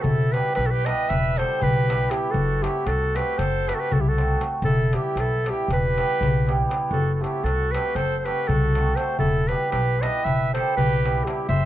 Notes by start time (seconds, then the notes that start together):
0.02 E1 E4 A4, darbuka dum
0.19 darbuka tek
0.32 G3 B3 E4 G4 B4, darbuka tek
0.44 darbuka tek
0.55 B1 G4 B4, darbuka tek
0.66 F#4 A4
0.71 G4 B4, darbuka tek
0.85 G3 B3 E4 G4 B4 D#5, darbuka tek
0.98 darbuka tek
1.09 E1 B4 E5, darbuka tek, darbuka dum
1.37 G3 B3 E4 G4 A4 C5, darbuka tek
1.61 B1 G4 B4, darbuka dum
1.77 darbuka tek
1.88 G3 B3 E4 G4, darbuka tek
2.01 darbuka tek
2.09 G3 B3 E4 G4, darbuka tek
2.30 F#1 F#4 A4, darbuka dum
2.50 darbuka tek
2.62 A3 C4 E4 F#4 G4 A4, darbuka tek
2.76 darbuka tek
2.85 C2 F#4 A4, darbuka tek
3.02 darbuka tek
3.14 A3 C4 F#4 G4 A4 B4, darbuka tek
3.28 darbuka tek
3.38 F#1 A4 C5, darbuka tek, darbuka dum
3.68 A3 C4 F#4 G4 A4 B4, darbuka tek
3.75 F#4 A4
3.80 G4 B4
3.91 C2 F#4 A4, darbuka dum
4.00 E4 G4
4.06 F#4 A4, darbuka tek
4.17 A3 C4 F#4 A4, darbuka tek
4.29 darbuka tek
4.40 A3 C4 F#4 A4, darbuka tek
4.53 darbuka tek
4.62 E1 E4 A4, darbuka dum
4.79 darbuka tek
4.92 G3 B3 E4 G4, darbuka tek
5.16 B1 E4, darbuka tek
5.20 A4
5.33 darbuka tek
5.44 G3 B3 E4 G4, darbuka tek
5.48 E4 G4
5.59 darbuka tek
5.68 E1 G4, darbuka tek, darbuka dum
5.73 B4
5.86 darbuka tek
5.96 G3 B3 E4 G4, darbuka tek
6.11 darbuka tek
6.21 B1, darbuka dum
6.37 darbuka tek
6.46 G3 B3 E4 G4, darbuka tek
6.60 darbuka tek
6.68 G3 B3 E4 G4, darbuka tek
6.83 darbuka tek
6.90 F#1 F#4 A4, darbuka dum
7.09 darbuka tek
7.14 F#4 A4
7.20 A3 C4 E4 F#4 G4 A4, darbuka tek
7.36 darbuka tek
7.44 C2 F#4 A4, darbuka tek
7.61 darbuka tek
7.72 A3 C4 G4 B4, darbuka tek
7.76 F#4 A4
7.86 darbuka tek
7.95 F#1 A4 C5, darbuka tek, darbuka dum
8.19 A4 C5
8.25 A3 C4 F#4 G4 A4 B4, darbuka tek
8.48 C2 F#4 A4, darbuka dum
8.75 A3 C4 F#4 A4, darbuka tek
8.86 darbuka tek
8.96 A3 C4 F#4 A4 C5, darbuka tek
9.01 A4
9.08 darbuka tek
9.18 E1 E4 A4, darbuka dum
9.34 darbuka tek
9.48 G3 B3 E4 G4 B4, darbuka tek
9.52 G4
9.61 darbuka tek
9.70 B1 G4 B4, darbuka tek
9.88 darbuka tek
10.00 G3 B3 B4 D#5, darbuka tek
10.04 E4 G4
10.15 darbuka tek
10.23 E1 B4 E5, darbuka tek, darbuka dum
10.53 G3 B3 E4 G4 A4 C5, darbuka tek
10.77 B1 G4 B4, darbuka dum
10.93 darbuka tek
11.05 G3 B3 E4 G4, darbuka tek
11.25 G3 B3 E4 G4, darbuka tek
11.38 darbuka tek
11.49 F#1 C5 E5, darbuka dum